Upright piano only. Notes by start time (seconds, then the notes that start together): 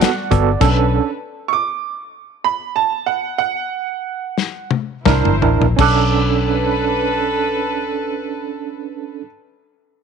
1.48 C#6
1.53 D6
2.44 B5
2.76 A5
3.06 F#5
3.38 F#5
5.81 D6 F#6